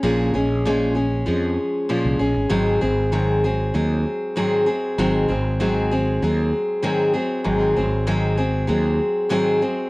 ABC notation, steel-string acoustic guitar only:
X:1
M:4/4
L:1/8
Q:1/4=97
K:Abmix
V:1 name="Steel-string acoustic guitar" clef=bass
[B,,F,A,DA] [A,DA] [B,,F,A,DA] [A,DA] [F,A,DA]2 [B,,F,A,DA] [A,DA] | [A,,E,G,A,CA] [G,A,CA] [A,,E,G,A,CA] [G,A,CA] [G,A,CA]2 [A,,E,G,A,CA] [G,A,CA] | [A,,E,G,A,CA] [G,A,CA] [A,,E,G,A,CA] [G,A,CA] [G,A,CA]2 [A,,E,G,A,CA] [G,A,CA] | [A,,E,G,A,CA] [G,A,CA] [A,,E,G,A,CA] [G,A,CA] [G,A,CA]2 [A,,E,G,A,CA] [G,A,CA] |]